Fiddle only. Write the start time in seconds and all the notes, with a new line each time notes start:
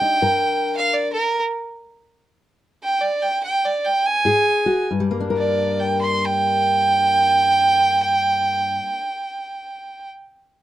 Already playing: G5
0.77 F5
0.94 D5
1.13 A#4
2.83 G5
3.01 D5
3.22 G5
3.43 G5
3.65 D5
3.84 G5
4.06 G#5
5.36 D5
5.79 G5
6.02 C6
6.25 G5